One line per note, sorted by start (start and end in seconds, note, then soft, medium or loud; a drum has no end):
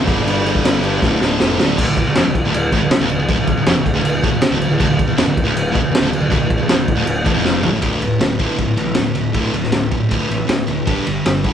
0.04 0.24 G1 medium
0.04 0.24 D3 medium
0.04 0.27 G3 loud
0.04 kick loud
0.08 0.22 G2 medium
0.08 crash medium
0.23 0.44 G1 loud
0.23 0.99 G2 medium
0.23 0.84 D3 loud
0.27 0.80 G3 loud
0.27 crash medium
0.45 0.63 G1 medium
0.45 crash medium
0.55 kick medium
0.64 1.00 G1 loud
0.64 snare loud
0.64 crash medium
0.81 1.00 G3 medium
0.81 crash medium
0.86 1.02 D3 medium
0.99 1.20 D1 medium
0.99 1.38 D2 medium
0.99 1.23 A2 loud
0.99 kick loud
0.99 snare medium
1.04 1.19 D3 loud
1.20 1.39 D1 medium
1.20 1.44 D3 medium
1.20 snare medium
1.25 1.42 A2 medium
1.40 1.58 F1 medium
1.40 1.76 D2 medium
1.40 1.63 A2 medium
1.40 snare medium
1.45 1.59 D3 medium
1.60 1.78 D1 medium
1.60 1.77 D3 medium
1.60 snare loud
1.64 1.79 A2 medium
1.78 1.87 D1 loud
1.78 1.87 D2 loud
1.78 kick loud
1.78 crash loud
1.78 crash medium
1.88 2.05 D1 medium
1.88 2.03 D2 medium
1.97 kick medium
1.97 crash medium
2.06 2.15 D1 medium
2.06 2.16 D2 medium
2.15 2.24 F1 loud
2.15 2.25 F2 loud
2.15 snare loud
2.15 crash medium
2.26 2.43 D1 medium
2.26 2.41 D2 medium
2.35 kick medium
2.35 crash medium
2.44 2.53 D1 loud
2.44 2.54 D2 loud
2.54 2.71 D1 medium
2.54 2.69 D2 medium
2.54 crash medium
2.72 2.81 A1 medium
2.72 2.81 A2 loud
2.72 kick medium
2.72 crash medium
2.82 2.91 D1 medium
2.82 2.91 D2 medium
2.91 muted picked electric bass stroke soft
2.91 muted distorted electric guitar stroke medium
2.91 snare loud
2.91 crash medium
3.01 3.09 D1 loud
3.01 3.09 D2 loud
3.09 3.19 D1 medium
3.09 3.18 D2 medium
3.09 crash medium
3.19 3.28 D1 medium
3.19 3.27 D2 medium
3.28 3.37 D1 loud
3.28 3.37 D2 loud
3.28 kick loud
3.28 crash medium
3.39 3.56 D1 medium
3.39 3.53 D2 medium
3.47 kick medium
3.47 crash medium
3.58 3.67 D1 medium
3.58 3.67 D2 medium
3.66 3.76 F1 loud
3.66 3.76 F2 loud
3.66 snare loud
3.66 crash medium
3.77 3.95 D1 medium
3.77 3.92 D2 medium
3.86 kick medium
3.86 crash medium
3.95 4.05 D1 loud
3.95 4.02 D2 loud
4.03 4.23 D1 medium
4.03 4.19 D2 medium
4.03 crash medium
4.23 4.32 A1 loud
4.23 4.31 A2 loud
4.23 kick medium
4.23 crash medium
4.31 4.42 D1 medium
4.31 4.40 D2 medium
4.41 muted distorted electric guitar stroke medium
4.41 muted picked electric bass stroke soft
4.41 snare loud
4.41 crash medium
4.51 4.60 D1 loud
4.51 4.59 D2 loud
4.60 4.69 D1 medium
4.60 4.67 D2 medium
4.60 crash medium
4.68 4.79 D1 medium
4.68 4.77 D2 medium
4.78 4.88 D1 loud
4.78 4.87 D2 loud
4.78 kick loud
4.78 crash medium
4.88 5.07 D1 medium
4.88 5.04 D2 medium
4.99 kick medium
4.99 crash medium
5.07 5.16 D1 medium
5.07 5.16 D2 medium
5.17 5.25 F1 loud
5.17 5.26 F2 loud
5.17 snare loud
5.17 crash medium
5.25 5.44 D1 medium
5.25 5.42 D2 medium
5.37 kick medium
5.37 crash medium
5.45 5.54 D1 loud
5.45 5.52 D2 loud
5.54 5.73 D1 medium
5.54 5.70 D2 medium
5.54 crash medium
5.72 5.82 A1 loud
5.72 5.82 A2 loud
5.72 kick medium
5.72 crash medium
5.82 5.92 D1 medium
5.82 5.90 D2 medium
5.91 muted distorted electric guitar stroke medium
5.91 muted picked electric bass stroke soft
5.91 crash medium
5.95 snare loud
6.00 6.09 D1 loud
6.00 6.09 D2 loud
6.09 6.19 D1 medium
6.09 6.19 D2 medium
6.09 crash medium
6.20 6.30 D1 medium
6.20 6.29 D2 medium
6.30 6.38 D1 loud
6.30 6.38 D2 loud
6.30 kick loud
6.30 crash medium
6.39 6.57 D1 medium
6.39 6.55 D2 medium
6.50 kick loud
6.50 crash medium
6.58 6.66 D1 medium
6.58 6.68 D2 medium
6.67 6.76 F1 medium
6.67 6.77 F2 loud
6.67 snare loud
6.67 crash medium
6.77 6.95 D1 medium
6.77 6.93 D2 medium
6.88 kick medium
6.88 crash medium
6.96 7.05 D1 loud
6.96 7.05 D2 loud
7.06 7.24 D1 medium
7.06 7.22 D2 medium
7.06 crash medium
7.25 7.35 A1 loud
7.25 7.33 A2 loud
7.25 kick medium
7.25 crash medium
7.33 7.62 F1 loud
7.33 7.62 F2 loud
7.45 snare medium
7.62 7.73 D1 loud
7.62 7.72 D2 loud
7.62 floor tom loud
7.72 7.82 A1 medium
7.72 7.80 A2 loud
7.80 7.95 D1 medium
7.80 7.98 D2 medium
7.80 7.99 A2 medium
7.80 8.00 D3 medium
7.80 kick loud
7.80 ride medium
8.00 8.14 D1 medium
8.00 8.18 D2 medium
8.00 8.18 A2 medium
8.00 ride medium
8.19 8.44 D1 medium
8.19 8.37 D2 medium
8.19 8.37 A2 medium
8.19 snare loud
8.19 ride medium
8.38 8.55 D2 medium
8.38 8.56 A2 medium
8.38 8.57 D3 medium
8.38 kick medium
8.38 ride medium
8.56 8.71 D1 medium
8.56 8.75 D2 medium
8.56 8.75 A2 medium
8.56 kick medium
8.56 ride medium
8.77 8.90 A1 medium
8.77 8.94 D2 medium
8.77 8.94 A2 medium
8.77 ride medium
8.95 9.13 D2 medium
8.95 9.10 D2 medium
8.95 9.13 A2 medium
8.95 snare loud
8.95 ride medium
9.14 9.28 D1 medium
9.14 9.31 D2 medium
9.14 9.32 A2 medium
9.14 ride medium
9.32 9.47 D1 medium
9.32 9.51 D2 medium
9.32 9.52 A2 medium
9.32 9.53 D3 loud
9.32 kick loud
9.32 ride medium
9.52 9.66 D1 medium
9.52 9.70 D2 medium
9.52 9.71 A2 medium
9.52 ride medium
9.63 snare soft
9.71 9.96 D1 medium
9.71 9.90 D2 medium
9.71 9.90 A2 medium
9.71 snare loud
9.71 ride medium
9.91 10.08 D2 medium
9.91 10.09 A2 medium
9.91 kick medium
9.91 ride medium
10.09 10.24 D1 medium
10.09 10.28 D2 medium
10.09 10.29 A2 loud
10.09 10.29 D3 medium
10.09 kick medium
10.09 ride medium
10.30 10.42 A1 medium
10.30 10.46 D2 medium
10.30 10.47 A2 medium
10.30 ride medium
10.47 10.66 D2 medium
10.47 10.61 D2 medium
10.47 10.66 A2 medium
10.47 snare loud
10.47 ride loud
10.67 10.80 D1 medium
10.67 10.85 D2 medium
10.67 10.85 A2 medium
10.67 ride medium
10.86 10.99 G1 medium
10.86 11.05 G2 medium
10.86 11.05 D3 medium
10.86 11.05 G3 loud
10.86 kick loud
10.86 ride medium
11.06 11.19 G1 medium
11.06 11.23 G2 medium
11.06 11.23 D3 medium
11.06 ride medium
11.25 11.51 G1 medium
11.25 11.42 G2 medium
11.25 11.43 D3 medium
11.25 snare loud
11.25 ride loud
11.44 11.53 G2 medium
11.44 11.53 D3 medium
11.44 11.53 G3 medium
11.44 kick medium
11.44 ride medium